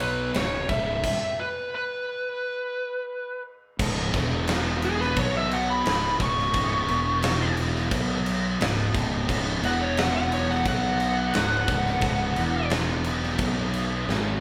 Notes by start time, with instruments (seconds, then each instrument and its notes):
Already playing: fingered electric bass B1, distorted electric guitar B2 F#3 B3
0.00 lead electric guitar B4, ride
0.34 fingered electric bass C#1, distorted electric guitar C#2 G#2, lead electric guitar C#5, snare, ride
0.69 fingered electric bass C#1, distorted electric guitar C#2 G#2 C#3, lead electric guitar E5, kick, ride
1.04 kick, crash
1.40 lead electric guitar B4
1.75 lead electric guitar B4
3.79 fingered electric bass C#1, distorted electric guitar C#2 G#2 C#3, kick, crash
4.14 fingered electric bass E1, distorted electric guitar E2 B2 E3, kick, crash
4.47 snare, crash
4.82 lead electric guitar G#4, crash
5.01 lead electric guitar B4, snare
5.16 fingered electric bass B1, distorted electric guitar B2 F#3 B3, lead electric guitar C#5, kick, crash
5.37 lead electric guitar E5
5.51 lead electric guitar F#5, crash
5.70 lead electric guitar B5
5.86 fingered electric bass C#1, distorted electric guitar C#2 G#2, snare, crash
6.20 fingered electric bass C#1, distorted electric guitar C#2 G#2 C#3, lead electric guitar C#6, kick, crash
6.39 snare
6.54 fingered electric bass C#1, distorted electric guitar C#2 G#2 C#3, kick, crash
6.88 fingered electric bass E1, distorted electric guitar E2 B2 E3, crash
7.22 snare, crash
7.57 crash
7.75 snare
7.91 fingered electric bass B1, distorted electric guitar B2 F#3 B3, kick, crash
8.26 crash
8.60 fingered electric bass C#1, distorted electric guitar C#2 G#2, snare, crash
8.94 fingered electric bass C#1, distorted electric guitar C#2 G#2 C#3, kick, crash
9.28 fingered electric bass C#1, distorted electric guitar C#2 G#2 C#3, kick, crash
9.63 fingered electric bass E1, distorted electric guitar E2 B2 E3, lead electric guitar F#5, crash
9.81 lead electric guitar C#5
9.97 lead electric guitar F#5, snare, crash
10.16 lead electric guitar F#5
10.32 lead electric guitar C#5, crash
10.50 lead electric guitar F#5, snare
10.65 fingered electric bass B1, distorted electric guitar B2 F#3 B3, lead electric guitar F#5, kick, crash
11.00 crash
11.34 fingered electric bass C#1, distorted electric guitar C#2 G#2, snare, crash
11.68 fingered electric bass C#1, distorted electric guitar C#2 G#2 C#3, kick, crash
11.86 snare
12.01 fingered electric bass C#1, distorted electric guitar C#2 G#2 C#3, kick, crash
12.36 fingered electric bass E1, distorted electric guitar E2 B2 E3, crash
12.70 snare, crash
13.04 crash
13.23 snare
13.38 fingered electric bass B1, distorted electric guitar B2 F#3 B3, kick, crash
13.74 crash
14.08 fingered electric bass G#1, distorted electric guitar G#2 D#3 G#3, snare